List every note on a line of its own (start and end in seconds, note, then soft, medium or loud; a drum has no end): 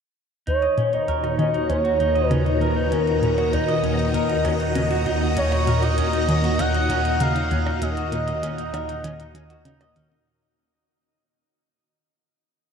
0.47 10.24 D#2 medium
0.47 0.68 D#2 medium
0.47 10.26 D#3 medium
0.47 0.62 D#4 medium
0.47 0.94 C#5 loud
0.47 closed hi-hat medium
0.62 0.77 D#5 medium
0.62 closed hi-hat soft
0.77 0.98 A#2 medium
0.77 10.26 A#2 medium
0.77 0.89 C#4 medium
0.77 closed hi-hat medium
0.89 10.27 F#4 medium
0.93 1.07 D#4 medium
0.93 1.38 D#5 loud
0.93 closed hi-hat soft
1.08 1.37 D#2 medium
1.08 1.23 A#4 medium
1.08 closed hi-hat medium
1.23 1.35 D#4 medium
1.23 closed hi-hat soft
1.23 percussion blips soft
1.38 1.60 D#3 medium
1.38 1.45 C#4 medium
1.38 1.67 D#5 loud
1.38 10.26 A#5 medium
1.38 closed hi-hat medium
1.54 1.69 D#4 medium
1.54 closed hi-hat soft
1.69 1.90 D#2 medium
1.69 1.76 C#4 medium
1.69 2.27 C#5 loud
1.69 closed hi-hat medium
1.84 1.96 F#4 medium
1.84 closed hi-hat soft
2.00 2.21 D#2 medium
2.00 2.15 D#4 medium
2.00 closed hi-hat medium
2.15 2.30 D#5 medium
2.15 closed hi-hat soft
2.23 10.27 D#5 medium
2.27 2.51 C#3 medium
2.27 2.42 C#4 medium
2.27 2.56 B4 loud
2.27 closed hi-hat medium
2.27 percussion blips soft
2.46 2.61 D#4 medium
2.46 closed hi-hat soft
2.54 2.63 C#5 medium
2.61 2.82 D#2 medium
2.61 2.76 A#4 medium
2.61 2.94 B4 medium
2.61 closed hi-hat soft
2.76 2.88 D#4 medium
2.91 3.12 D#2 medium
2.91 2.99 C#4 medium
2.91 3.54 A#4 medium
2.91 closed hi-hat medium
3.07 3.22 D#4 medium
3.07 closed hi-hat soft
3.22 3.43 A#2 medium
3.22 3.29 C#4 medium
3.22 closed hi-hat medium
3.38 3.49 F#4 medium
3.38 closed hi-hat soft
3.38 percussion blips soft
3.53 3.82 D#2 medium
3.53 3.68 D#4 medium
3.53 5.06 D#5 loud
3.53 closed hi-hat medium
3.68 3.83 D#5 medium
3.68 closed hi-hat soft
3.83 4.04 D#3 medium
3.83 3.95 C#4 medium
3.83 closed hi-hat medium
3.99 4.13 D#4 medium
3.99 closed hi-hat soft
4.14 4.35 D#2 medium
4.14 4.29 A#4 medium
4.14 closed hi-hat medium
4.29 4.41 D#4 medium
4.29 closed hi-hat soft
4.45 4.66 D#2 medium
4.45 4.52 C#4 medium
4.45 closed hi-hat medium
4.45 percussion blips soft
4.60 4.75 D#4 medium
4.60 closed hi-hat soft
4.75 4.96 C#3 medium
4.75 4.82 C#4 medium
4.75 closed hi-hat medium
4.91 5.02 F#4 medium
4.91 closed hi-hat soft
5.06 5.27 D#2 medium
5.06 5.21 D#4 loud
5.06 closed hi-hat soft
5.21 5.36 D#5 medium
5.37 5.58 D#2 medium
5.37 5.48 C#4 medium
5.37 5.84 C#5 medium
5.37 closed hi-hat medium
5.52 5.67 D#4 medium
5.52 closed hi-hat soft
5.52 percussion blips soft
5.67 5.88 A#2 medium
5.67 5.82 A#4 medium
5.67 closed hi-hat medium
5.82 5.94 D#4 medium
5.82 6.28 D#5 loud
5.82 closed hi-hat soft
5.98 6.27 D#2 medium
5.98 6.05 C#4 medium
5.98 closed hi-hat medium
6.13 6.28 D#4 medium
6.13 closed hi-hat soft
6.28 6.49 D#3 medium
6.28 6.35 C#4 medium
6.28 6.61 D#5 loud
6.28 closed hi-hat medium
6.44 6.55 F#4 medium
6.44 closed hi-hat soft
6.59 6.80 D#2 medium
6.59 6.74 D#4 medium
6.59 7.23 F#5 loud
6.59 closed hi-hat medium
6.59 percussion blips soft
6.74 6.89 D#5 medium
6.74 closed hi-hat soft
6.90 7.11 D#2 medium
6.90 7.01 C#4 medium
6.90 closed hi-hat medium
7.05 7.20 D#4 medium
7.05 closed hi-hat soft
7.20 7.41 C#3 medium
7.20 7.35 A#4 medium
7.20 7.84 F5 loud
7.20 closed hi-hat medium
7.36 7.47 D#4 medium
7.36 closed hi-hat soft
7.51 7.72 D#2 medium
7.51 7.58 C#4 medium
7.51 closed hi-hat soft
7.66 7.81 D#4 medium
7.66 percussion blips soft
7.82 8.02 D#2 medium
7.82 7.89 C#4 medium
7.82 9.66 D#5 loud
7.82 closed hi-hat medium
7.97 8.08 F#4 medium
7.97 closed hi-hat soft
8.12 8.33 A#2 medium
8.12 8.27 D#4 medium
8.12 closed hi-hat medium
8.27 8.42 D#5 medium
8.27 closed hi-hat soft
8.43 8.72 D#2 medium
8.43 8.54 C#4 medium
8.43 closed hi-hat medium
8.58 8.73 D#4 medium
8.58 closed hi-hat soft
8.73 8.94 D#3 medium
8.73 8.88 A#4 medium
8.73 closed hi-hat medium
8.73 percussion blips soft
8.89 9.00 D#4 medium
8.89 closed hi-hat soft
9.04 9.25 D#2 medium
9.04 9.11 C#4 loud
9.04 closed hi-hat medium
9.19 9.34 D#4 medium
9.19 closed hi-hat soft
9.35 9.56 D#2 medium
9.35 9.41 C#4 medium
9.35 closed hi-hat medium
9.50 9.61 F#4 medium
9.50 closed hi-hat soft
9.65 9.86 C#3 medium
9.65 9.80 D#4 loud
9.65 closed hi-hat medium
9.81 9.95 D#5 medium
9.81 closed hi-hat soft
9.81 percussion blips soft
9.96 10.17 D#2 medium
9.96 10.07 C#4 medium
9.96 closed hi-hat soft
10.11 10.26 D#4 medium